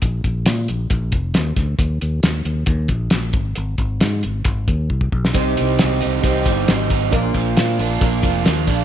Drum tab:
HH |x-x-x-x-x-x-x-x-|x-x-x-x-x-x-x-x-|x-x-x-x-x-x-----|x-x-x-x-x-x-x-x-|
SD |----o-------o-o-|----o-------o---|----o----------o|----oo------o---|
BD |o-o-----o-o---o-|o-------o-o---o-|--o-----o-o-ooo-|o-------o-o---o-|

HH |x-x-x-x-x-x-x-x-|
SD |----o-------o-o-|
BD |o-o-----o-o---o-|